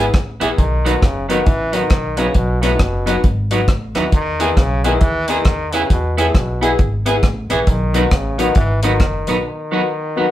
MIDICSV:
0, 0, Header, 1, 6, 480
1, 0, Start_track
1, 0, Key_signature, 4, "major"
1, 0, Tempo, 443459
1, 628, Time_signature, 4, 2, 24, 8
1, 11160, End_track
2, 0, Start_track
2, 0, Title_t, "Upright piano"
2, 0, Program_c, 0, 0
2, 438, Note_on_c, 0, 59, 80
2, 444, Note_on_c, 0, 64, 72
2, 451, Note_on_c, 0, 68, 102
2, 574, Note_off_c, 0, 59, 0
2, 577, Note_off_c, 0, 64, 0
2, 581, Note_off_c, 0, 68, 0
2, 925, Note_on_c, 0, 59, 91
2, 932, Note_on_c, 0, 63, 83
2, 938, Note_on_c, 0, 66, 92
2, 1058, Note_off_c, 0, 59, 0
2, 1061, Note_off_c, 0, 63, 0
2, 1064, Note_off_c, 0, 66, 0
2, 1399, Note_on_c, 0, 59, 96
2, 1404, Note_on_c, 0, 63, 97
2, 1412, Note_on_c, 0, 66, 111
2, 1534, Note_off_c, 0, 59, 0
2, 1537, Note_off_c, 0, 63, 0
2, 1541, Note_off_c, 0, 66, 0
2, 1877, Note_on_c, 0, 59, 87
2, 1883, Note_on_c, 0, 63, 84
2, 1889, Note_on_c, 0, 66, 106
2, 2013, Note_off_c, 0, 59, 0
2, 2016, Note_off_c, 0, 63, 0
2, 2020, Note_off_c, 0, 66, 0
2, 2353, Note_on_c, 0, 59, 88
2, 2360, Note_on_c, 0, 63, 75
2, 2368, Note_on_c, 0, 66, 91
2, 2491, Note_off_c, 0, 59, 0
2, 2495, Note_off_c, 0, 63, 0
2, 2499, Note_off_c, 0, 66, 0
2, 2837, Note_on_c, 0, 59, 94
2, 2841, Note_on_c, 0, 63, 76
2, 2849, Note_on_c, 0, 66, 108
2, 2973, Note_off_c, 0, 59, 0
2, 2975, Note_off_c, 0, 63, 0
2, 2979, Note_off_c, 0, 66, 0
2, 3310, Note_on_c, 0, 59, 102
2, 3315, Note_on_c, 0, 63, 102
2, 3321, Note_on_c, 0, 66, 115
2, 3449, Note_off_c, 0, 59, 0
2, 3452, Note_off_c, 0, 63, 0
2, 3455, Note_off_c, 0, 66, 0
2, 3797, Note_on_c, 0, 59, 86
2, 3802, Note_on_c, 0, 63, 71
2, 3809, Note_on_c, 0, 66, 106
2, 3933, Note_off_c, 0, 59, 0
2, 3935, Note_off_c, 0, 63, 0
2, 3939, Note_off_c, 0, 66, 0
2, 4274, Note_on_c, 0, 59, 83
2, 4278, Note_on_c, 0, 63, 65
2, 4287, Note_on_c, 0, 66, 82
2, 4411, Note_off_c, 0, 59, 0
2, 4413, Note_off_c, 0, 63, 0
2, 4418, Note_off_c, 0, 66, 0
2, 4760, Note_on_c, 0, 59, 93
2, 4765, Note_on_c, 0, 64, 84
2, 4773, Note_on_c, 0, 68, 102
2, 4894, Note_off_c, 0, 59, 0
2, 4897, Note_off_c, 0, 64, 0
2, 4901, Note_off_c, 0, 68, 0
2, 5244, Note_on_c, 0, 59, 102
2, 5247, Note_on_c, 0, 64, 100
2, 5256, Note_on_c, 0, 68, 113
2, 5376, Note_off_c, 0, 59, 0
2, 5378, Note_off_c, 0, 64, 0
2, 5382, Note_off_c, 0, 68, 0
2, 5718, Note_on_c, 0, 59, 81
2, 5725, Note_on_c, 0, 64, 83
2, 5733, Note_on_c, 0, 68, 96
2, 5853, Note_off_c, 0, 59, 0
2, 5857, Note_off_c, 0, 64, 0
2, 5860, Note_off_c, 0, 68, 0
2, 6201, Note_on_c, 0, 59, 73
2, 6209, Note_on_c, 0, 64, 71
2, 6213, Note_on_c, 0, 68, 88
2, 6335, Note_off_c, 0, 59, 0
2, 6339, Note_off_c, 0, 64, 0
2, 6341, Note_off_c, 0, 68, 0
2, 6679, Note_on_c, 0, 59, 83
2, 6686, Note_on_c, 0, 64, 84
2, 6693, Note_on_c, 0, 68, 94
2, 6813, Note_off_c, 0, 59, 0
2, 6817, Note_off_c, 0, 64, 0
2, 6820, Note_off_c, 0, 68, 0
2, 7158, Note_on_c, 0, 59, 103
2, 7162, Note_on_c, 0, 64, 101
2, 7169, Note_on_c, 0, 68, 124
2, 7293, Note_off_c, 0, 59, 0
2, 7295, Note_off_c, 0, 64, 0
2, 7299, Note_off_c, 0, 68, 0
2, 7637, Note_on_c, 0, 59, 95
2, 7639, Note_on_c, 0, 64, 83
2, 7649, Note_on_c, 0, 68, 109
2, 7773, Note_off_c, 0, 59, 0
2, 7774, Note_off_c, 0, 64, 0
2, 7779, Note_off_c, 0, 68, 0
2, 8113, Note_on_c, 0, 59, 80
2, 8118, Note_on_c, 0, 64, 74
2, 8124, Note_on_c, 0, 68, 89
2, 8251, Note_off_c, 0, 59, 0
2, 8253, Note_off_c, 0, 64, 0
2, 8256, Note_off_c, 0, 68, 0
2, 8597, Note_on_c, 0, 59, 94
2, 8603, Note_on_c, 0, 63, 83
2, 8610, Note_on_c, 0, 66, 99
2, 8732, Note_off_c, 0, 59, 0
2, 8735, Note_off_c, 0, 63, 0
2, 8739, Note_off_c, 0, 66, 0
2, 9073, Note_on_c, 0, 59, 107
2, 9078, Note_on_c, 0, 63, 93
2, 9089, Note_on_c, 0, 66, 120
2, 9211, Note_off_c, 0, 59, 0
2, 9213, Note_off_c, 0, 63, 0
2, 9218, Note_off_c, 0, 66, 0
2, 9556, Note_on_c, 0, 59, 82
2, 9563, Note_on_c, 0, 63, 81
2, 9570, Note_on_c, 0, 66, 101
2, 9692, Note_off_c, 0, 59, 0
2, 9696, Note_off_c, 0, 63, 0
2, 9699, Note_off_c, 0, 66, 0
2, 10037, Note_on_c, 0, 59, 85
2, 10045, Note_on_c, 0, 63, 76
2, 10052, Note_on_c, 0, 66, 87
2, 10172, Note_off_c, 0, 59, 0
2, 10176, Note_off_c, 0, 63, 0
2, 10180, Note_off_c, 0, 66, 0
2, 10513, Note_on_c, 0, 59, 91
2, 10520, Note_on_c, 0, 63, 74
2, 10526, Note_on_c, 0, 66, 100
2, 10650, Note_off_c, 0, 59, 0
2, 10653, Note_off_c, 0, 63, 0
2, 10656, Note_off_c, 0, 66, 0
2, 10995, Note_on_c, 0, 59, 93
2, 11000, Note_on_c, 0, 63, 89
2, 11010, Note_on_c, 0, 66, 115
2, 11131, Note_off_c, 0, 59, 0
2, 11133, Note_off_c, 0, 63, 0
2, 11139, Note_off_c, 0, 66, 0
2, 11160, End_track
3, 0, Start_track
3, 0, Title_t, "Clean electric guitar"
3, 0, Program_c, 1, 27
3, 435, Note_on_c, 1, 59, 100
3, 443, Note_on_c, 1, 64, 87
3, 448, Note_on_c, 1, 68, 92
3, 529, Note_off_c, 1, 59, 0
3, 533, Note_off_c, 1, 64, 0
3, 535, Note_off_c, 1, 68, 0
3, 918, Note_on_c, 1, 54, 93
3, 925, Note_on_c, 1, 59, 101
3, 930, Note_on_c, 1, 63, 110
3, 1010, Note_off_c, 1, 54, 0
3, 1013, Note_off_c, 1, 59, 0
3, 1016, Note_off_c, 1, 63, 0
3, 1393, Note_on_c, 1, 54, 79
3, 1401, Note_on_c, 1, 59, 90
3, 1411, Note_on_c, 1, 63, 88
3, 1487, Note_off_c, 1, 54, 0
3, 1491, Note_off_c, 1, 59, 0
3, 1496, Note_off_c, 1, 63, 0
3, 1865, Note_on_c, 1, 54, 84
3, 1876, Note_on_c, 1, 59, 81
3, 1882, Note_on_c, 1, 63, 71
3, 1963, Note_off_c, 1, 54, 0
3, 1969, Note_off_c, 1, 59, 0
3, 1971, Note_off_c, 1, 63, 0
3, 2349, Note_on_c, 1, 54, 86
3, 2360, Note_on_c, 1, 59, 89
3, 2370, Note_on_c, 1, 63, 95
3, 2445, Note_off_c, 1, 54, 0
3, 2450, Note_off_c, 1, 59, 0
3, 2455, Note_off_c, 1, 63, 0
3, 2837, Note_on_c, 1, 54, 83
3, 2845, Note_on_c, 1, 59, 87
3, 2855, Note_on_c, 1, 63, 97
3, 2929, Note_off_c, 1, 54, 0
3, 2933, Note_off_c, 1, 59, 0
3, 2938, Note_off_c, 1, 63, 0
3, 3315, Note_on_c, 1, 54, 91
3, 3324, Note_on_c, 1, 59, 85
3, 3328, Note_on_c, 1, 63, 86
3, 3408, Note_off_c, 1, 54, 0
3, 3412, Note_off_c, 1, 59, 0
3, 3414, Note_off_c, 1, 63, 0
3, 3802, Note_on_c, 1, 54, 90
3, 3811, Note_on_c, 1, 59, 83
3, 3816, Note_on_c, 1, 63, 88
3, 3891, Note_off_c, 1, 54, 0
3, 3896, Note_off_c, 1, 59, 0
3, 3898, Note_off_c, 1, 63, 0
3, 4275, Note_on_c, 1, 54, 84
3, 4283, Note_on_c, 1, 59, 88
3, 4289, Note_on_c, 1, 63, 102
3, 4367, Note_off_c, 1, 54, 0
3, 4371, Note_off_c, 1, 59, 0
3, 4375, Note_off_c, 1, 63, 0
3, 4759, Note_on_c, 1, 59, 82
3, 4768, Note_on_c, 1, 64, 97
3, 4772, Note_on_c, 1, 68, 108
3, 4849, Note_off_c, 1, 59, 0
3, 4854, Note_off_c, 1, 64, 0
3, 4856, Note_off_c, 1, 68, 0
3, 5242, Note_on_c, 1, 59, 80
3, 5250, Note_on_c, 1, 64, 88
3, 5255, Note_on_c, 1, 68, 91
3, 5331, Note_off_c, 1, 59, 0
3, 5335, Note_off_c, 1, 64, 0
3, 5337, Note_off_c, 1, 68, 0
3, 5719, Note_on_c, 1, 59, 72
3, 5731, Note_on_c, 1, 64, 90
3, 5739, Note_on_c, 1, 68, 80
3, 5809, Note_off_c, 1, 59, 0
3, 5816, Note_off_c, 1, 64, 0
3, 5820, Note_off_c, 1, 68, 0
3, 6205, Note_on_c, 1, 59, 87
3, 6211, Note_on_c, 1, 64, 100
3, 6219, Note_on_c, 1, 68, 100
3, 6293, Note_off_c, 1, 59, 0
3, 6295, Note_off_c, 1, 64, 0
3, 6300, Note_off_c, 1, 68, 0
3, 6683, Note_on_c, 1, 59, 91
3, 6692, Note_on_c, 1, 64, 104
3, 6701, Note_on_c, 1, 68, 90
3, 6771, Note_off_c, 1, 59, 0
3, 6776, Note_off_c, 1, 64, 0
3, 6780, Note_off_c, 1, 68, 0
3, 7159, Note_on_c, 1, 59, 85
3, 7173, Note_on_c, 1, 64, 83
3, 7176, Note_on_c, 1, 68, 81
3, 7249, Note_off_c, 1, 59, 0
3, 7256, Note_off_c, 1, 64, 0
3, 7258, Note_off_c, 1, 68, 0
3, 7639, Note_on_c, 1, 59, 81
3, 7646, Note_on_c, 1, 64, 78
3, 7658, Note_on_c, 1, 68, 85
3, 7729, Note_off_c, 1, 59, 0
3, 7733, Note_off_c, 1, 64, 0
3, 7739, Note_off_c, 1, 68, 0
3, 8119, Note_on_c, 1, 59, 84
3, 8125, Note_on_c, 1, 64, 75
3, 8132, Note_on_c, 1, 68, 93
3, 8209, Note_off_c, 1, 59, 0
3, 8212, Note_off_c, 1, 64, 0
3, 8216, Note_off_c, 1, 68, 0
3, 8596, Note_on_c, 1, 54, 100
3, 8604, Note_on_c, 1, 59, 100
3, 8611, Note_on_c, 1, 63, 103
3, 8688, Note_off_c, 1, 54, 0
3, 8691, Note_off_c, 1, 59, 0
3, 8695, Note_off_c, 1, 63, 0
3, 9075, Note_on_c, 1, 54, 80
3, 9086, Note_on_c, 1, 59, 73
3, 9090, Note_on_c, 1, 63, 98
3, 9167, Note_off_c, 1, 54, 0
3, 9172, Note_off_c, 1, 59, 0
3, 9175, Note_off_c, 1, 63, 0
3, 9561, Note_on_c, 1, 54, 74
3, 9570, Note_on_c, 1, 59, 83
3, 9572, Note_on_c, 1, 63, 95
3, 9650, Note_off_c, 1, 54, 0
3, 9654, Note_off_c, 1, 59, 0
3, 9656, Note_off_c, 1, 63, 0
3, 10045, Note_on_c, 1, 54, 80
3, 10053, Note_on_c, 1, 59, 98
3, 10060, Note_on_c, 1, 63, 103
3, 10132, Note_off_c, 1, 54, 0
3, 10136, Note_off_c, 1, 59, 0
3, 10139, Note_off_c, 1, 63, 0
3, 10517, Note_on_c, 1, 54, 101
3, 10530, Note_on_c, 1, 59, 94
3, 10536, Note_on_c, 1, 63, 97
3, 10608, Note_off_c, 1, 54, 0
3, 10614, Note_off_c, 1, 59, 0
3, 10617, Note_off_c, 1, 63, 0
3, 11009, Note_on_c, 1, 54, 73
3, 11013, Note_on_c, 1, 59, 89
3, 11022, Note_on_c, 1, 63, 76
3, 11094, Note_off_c, 1, 54, 0
3, 11096, Note_off_c, 1, 59, 0
3, 11100, Note_off_c, 1, 63, 0
3, 11160, End_track
4, 0, Start_track
4, 0, Title_t, "Trombone"
4, 0, Program_c, 2, 57
4, 443, Note_on_c, 2, 52, 83
4, 526, Note_off_c, 2, 52, 0
4, 617, Note_on_c, 2, 51, 104
4, 1113, Note_on_c, 2, 49, 94
4, 1129, Note_off_c, 2, 51, 0
4, 1387, Note_off_c, 2, 49, 0
4, 1393, Note_on_c, 2, 51, 103
4, 1581, Note_on_c, 2, 52, 103
4, 1597, Note_off_c, 2, 51, 0
4, 1884, Note_on_c, 2, 51, 102
4, 1900, Note_off_c, 2, 52, 0
4, 2361, Note_on_c, 2, 49, 89
4, 2377, Note_off_c, 2, 51, 0
4, 2552, Note_on_c, 2, 47, 94
4, 2569, Note_off_c, 2, 49, 0
4, 2851, Note_on_c, 2, 45, 85
4, 2867, Note_off_c, 2, 47, 0
4, 3041, Note_on_c, 2, 47, 87
4, 3057, Note_off_c, 2, 45, 0
4, 3514, Note_off_c, 2, 47, 0
4, 4284, Note_on_c, 2, 52, 82
4, 4455, Note_off_c, 2, 52, 0
4, 4473, Note_on_c, 2, 51, 111
4, 4951, Note_on_c, 2, 49, 102
4, 4967, Note_off_c, 2, 51, 0
4, 5242, Note_on_c, 2, 51, 101
4, 5258, Note_off_c, 2, 49, 0
4, 5424, Note_on_c, 2, 52, 114
4, 5440, Note_off_c, 2, 51, 0
4, 5728, Note_on_c, 2, 51, 103
4, 5744, Note_off_c, 2, 52, 0
4, 6219, Note_on_c, 2, 49, 87
4, 6235, Note_off_c, 2, 51, 0
4, 6395, Note_off_c, 2, 49, 0
4, 6402, Note_on_c, 2, 47, 87
4, 6707, Note_on_c, 2, 45, 86
4, 6723, Note_off_c, 2, 47, 0
4, 6879, Note_off_c, 2, 45, 0
4, 6890, Note_on_c, 2, 47, 76
4, 7325, Note_off_c, 2, 47, 0
4, 8127, Note_on_c, 2, 52, 95
4, 8324, Note_on_c, 2, 51, 95
4, 8340, Note_off_c, 2, 52, 0
4, 8798, Note_on_c, 2, 49, 88
4, 8814, Note_off_c, 2, 51, 0
4, 9086, Note_on_c, 2, 51, 99
4, 9102, Note_off_c, 2, 49, 0
4, 9263, Note_off_c, 2, 51, 0
4, 9269, Note_on_c, 2, 52, 108
4, 9542, Note_off_c, 2, 52, 0
4, 9558, Note_on_c, 2, 51, 99
4, 10181, Note_off_c, 2, 51, 0
4, 10215, Note_on_c, 2, 51, 91
4, 11160, Note_off_c, 2, 51, 0
4, 11160, End_track
5, 0, Start_track
5, 0, Title_t, "Upright bass"
5, 0, Program_c, 3, 32
5, 157, Note_on_c, 3, 33, 78
5, 403, Note_off_c, 3, 33, 0
5, 449, Note_on_c, 3, 34, 74
5, 604, Note_off_c, 3, 34, 0
5, 635, Note_on_c, 3, 35, 93
5, 1110, Note_off_c, 3, 35, 0
5, 1110, Note_on_c, 3, 30, 97
5, 1517, Note_off_c, 3, 30, 0
5, 1592, Note_on_c, 3, 33, 88
5, 1998, Note_off_c, 3, 33, 0
5, 2065, Note_on_c, 3, 35, 69
5, 2474, Note_off_c, 3, 35, 0
5, 2545, Note_on_c, 3, 35, 98
5, 2954, Note_off_c, 3, 35, 0
5, 3027, Note_on_c, 3, 30, 80
5, 3435, Note_off_c, 3, 30, 0
5, 3509, Note_on_c, 3, 32, 93
5, 3916, Note_off_c, 3, 32, 0
5, 3987, Note_on_c, 3, 33, 85
5, 4237, Note_off_c, 3, 33, 0
5, 4276, Note_on_c, 3, 39, 88
5, 4436, Note_off_c, 3, 39, 0
5, 4467, Note_on_c, 3, 40, 100
5, 4875, Note_off_c, 3, 40, 0
5, 4950, Note_on_c, 3, 35, 80
5, 5356, Note_off_c, 3, 35, 0
5, 5427, Note_on_c, 3, 39, 90
5, 5834, Note_off_c, 3, 39, 0
5, 5905, Note_on_c, 3, 40, 80
5, 6313, Note_off_c, 3, 40, 0
5, 6391, Note_on_c, 3, 40, 114
5, 6797, Note_off_c, 3, 40, 0
5, 6870, Note_on_c, 3, 35, 83
5, 7276, Note_off_c, 3, 35, 0
5, 7355, Note_on_c, 3, 32, 87
5, 7759, Note_off_c, 3, 32, 0
5, 7828, Note_on_c, 3, 33, 95
5, 8078, Note_off_c, 3, 33, 0
5, 8124, Note_on_c, 3, 34, 77
5, 8280, Note_off_c, 3, 34, 0
5, 8304, Note_on_c, 3, 35, 102
5, 8713, Note_off_c, 3, 35, 0
5, 8787, Note_on_c, 3, 33, 93
5, 9195, Note_off_c, 3, 33, 0
5, 9264, Note_on_c, 3, 32, 94
5, 9743, Note_off_c, 3, 32, 0
5, 9743, Note_on_c, 3, 30, 85
5, 9994, Note_off_c, 3, 30, 0
5, 10042, Note_on_c, 3, 34, 91
5, 10199, Note_off_c, 3, 34, 0
5, 11160, End_track
6, 0, Start_track
6, 0, Title_t, "Drums"
6, 148, Note_on_c, 9, 42, 78
6, 150, Note_on_c, 9, 36, 125
6, 155, Note_on_c, 9, 37, 116
6, 256, Note_off_c, 9, 42, 0
6, 258, Note_off_c, 9, 36, 0
6, 264, Note_off_c, 9, 37, 0
6, 447, Note_on_c, 9, 42, 85
6, 555, Note_off_c, 9, 42, 0
6, 632, Note_on_c, 9, 36, 98
6, 633, Note_on_c, 9, 42, 83
6, 740, Note_off_c, 9, 36, 0
6, 741, Note_off_c, 9, 42, 0
6, 935, Note_on_c, 9, 42, 95
6, 1043, Note_off_c, 9, 42, 0
6, 1109, Note_on_c, 9, 36, 116
6, 1110, Note_on_c, 9, 42, 86
6, 1112, Note_on_c, 9, 37, 97
6, 1217, Note_off_c, 9, 36, 0
6, 1218, Note_off_c, 9, 42, 0
6, 1220, Note_off_c, 9, 37, 0
6, 1406, Note_on_c, 9, 42, 82
6, 1514, Note_off_c, 9, 42, 0
6, 1585, Note_on_c, 9, 42, 70
6, 1589, Note_on_c, 9, 36, 127
6, 1693, Note_off_c, 9, 42, 0
6, 1697, Note_off_c, 9, 36, 0
6, 1874, Note_on_c, 9, 42, 104
6, 1982, Note_off_c, 9, 42, 0
6, 2055, Note_on_c, 9, 42, 77
6, 2062, Note_on_c, 9, 36, 117
6, 2063, Note_on_c, 9, 37, 106
6, 2164, Note_off_c, 9, 42, 0
6, 2170, Note_off_c, 9, 36, 0
6, 2171, Note_off_c, 9, 37, 0
6, 2351, Note_on_c, 9, 42, 88
6, 2459, Note_off_c, 9, 42, 0
6, 2538, Note_on_c, 9, 42, 81
6, 2544, Note_on_c, 9, 36, 102
6, 2646, Note_off_c, 9, 42, 0
6, 2652, Note_off_c, 9, 36, 0
6, 2844, Note_on_c, 9, 42, 91
6, 2953, Note_off_c, 9, 42, 0
6, 3024, Note_on_c, 9, 42, 82
6, 3025, Note_on_c, 9, 36, 110
6, 3026, Note_on_c, 9, 37, 114
6, 3132, Note_off_c, 9, 42, 0
6, 3133, Note_off_c, 9, 36, 0
6, 3134, Note_off_c, 9, 37, 0
6, 3324, Note_on_c, 9, 42, 98
6, 3432, Note_off_c, 9, 42, 0
6, 3504, Note_on_c, 9, 42, 72
6, 3508, Note_on_c, 9, 36, 119
6, 3612, Note_off_c, 9, 42, 0
6, 3616, Note_off_c, 9, 36, 0
6, 3798, Note_on_c, 9, 42, 104
6, 3906, Note_off_c, 9, 42, 0
6, 3982, Note_on_c, 9, 42, 76
6, 3983, Note_on_c, 9, 36, 120
6, 3989, Note_on_c, 9, 37, 114
6, 4090, Note_off_c, 9, 42, 0
6, 4091, Note_off_c, 9, 36, 0
6, 4097, Note_off_c, 9, 37, 0
6, 4276, Note_on_c, 9, 42, 79
6, 4284, Note_on_c, 9, 37, 62
6, 4384, Note_off_c, 9, 42, 0
6, 4392, Note_off_c, 9, 37, 0
6, 4463, Note_on_c, 9, 42, 82
6, 4465, Note_on_c, 9, 36, 106
6, 4572, Note_off_c, 9, 42, 0
6, 4573, Note_off_c, 9, 36, 0
6, 4762, Note_on_c, 9, 42, 94
6, 4870, Note_off_c, 9, 42, 0
6, 4945, Note_on_c, 9, 36, 111
6, 4948, Note_on_c, 9, 42, 80
6, 4950, Note_on_c, 9, 37, 92
6, 5053, Note_off_c, 9, 36, 0
6, 5056, Note_off_c, 9, 42, 0
6, 5058, Note_off_c, 9, 37, 0
6, 5243, Note_on_c, 9, 42, 90
6, 5352, Note_off_c, 9, 42, 0
6, 5420, Note_on_c, 9, 42, 78
6, 5427, Note_on_c, 9, 36, 127
6, 5528, Note_off_c, 9, 42, 0
6, 5535, Note_off_c, 9, 36, 0
6, 5713, Note_on_c, 9, 42, 94
6, 5822, Note_off_c, 9, 42, 0
6, 5897, Note_on_c, 9, 42, 76
6, 5903, Note_on_c, 9, 36, 127
6, 5904, Note_on_c, 9, 37, 121
6, 6005, Note_off_c, 9, 42, 0
6, 6012, Note_off_c, 9, 36, 0
6, 6012, Note_off_c, 9, 37, 0
6, 6197, Note_on_c, 9, 42, 92
6, 6305, Note_off_c, 9, 42, 0
6, 6389, Note_on_c, 9, 36, 102
6, 6389, Note_on_c, 9, 42, 84
6, 6497, Note_off_c, 9, 36, 0
6, 6497, Note_off_c, 9, 42, 0
6, 6692, Note_on_c, 9, 42, 88
6, 6800, Note_off_c, 9, 42, 0
6, 6868, Note_on_c, 9, 36, 108
6, 6872, Note_on_c, 9, 42, 85
6, 6874, Note_on_c, 9, 37, 94
6, 6977, Note_off_c, 9, 36, 0
6, 6980, Note_off_c, 9, 42, 0
6, 6982, Note_off_c, 9, 37, 0
6, 7172, Note_on_c, 9, 42, 86
6, 7281, Note_off_c, 9, 42, 0
6, 7348, Note_on_c, 9, 42, 72
6, 7351, Note_on_c, 9, 36, 121
6, 7456, Note_off_c, 9, 42, 0
6, 7459, Note_off_c, 9, 36, 0
6, 7643, Note_on_c, 9, 42, 99
6, 7751, Note_off_c, 9, 42, 0
6, 7824, Note_on_c, 9, 42, 78
6, 7825, Note_on_c, 9, 36, 118
6, 7832, Note_on_c, 9, 37, 116
6, 7932, Note_off_c, 9, 42, 0
6, 7934, Note_off_c, 9, 36, 0
6, 7940, Note_off_c, 9, 37, 0
6, 8118, Note_on_c, 9, 42, 80
6, 8226, Note_off_c, 9, 42, 0
6, 8302, Note_on_c, 9, 42, 82
6, 8305, Note_on_c, 9, 36, 103
6, 8410, Note_off_c, 9, 42, 0
6, 8413, Note_off_c, 9, 36, 0
6, 8598, Note_on_c, 9, 42, 95
6, 8707, Note_off_c, 9, 42, 0
6, 8782, Note_on_c, 9, 42, 85
6, 8783, Note_on_c, 9, 36, 110
6, 8783, Note_on_c, 9, 37, 105
6, 8890, Note_off_c, 9, 42, 0
6, 8892, Note_off_c, 9, 36, 0
6, 8892, Note_off_c, 9, 37, 0
6, 9081, Note_on_c, 9, 42, 94
6, 9189, Note_off_c, 9, 42, 0
6, 9254, Note_on_c, 9, 42, 78
6, 9264, Note_on_c, 9, 36, 125
6, 9362, Note_off_c, 9, 42, 0
6, 9372, Note_off_c, 9, 36, 0
6, 9554, Note_on_c, 9, 42, 108
6, 9662, Note_off_c, 9, 42, 0
6, 9739, Note_on_c, 9, 42, 76
6, 9742, Note_on_c, 9, 36, 123
6, 9747, Note_on_c, 9, 37, 110
6, 9847, Note_off_c, 9, 42, 0
6, 9851, Note_off_c, 9, 36, 0
6, 9855, Note_off_c, 9, 37, 0
6, 10035, Note_on_c, 9, 42, 78
6, 10143, Note_off_c, 9, 42, 0
6, 11160, End_track
0, 0, End_of_file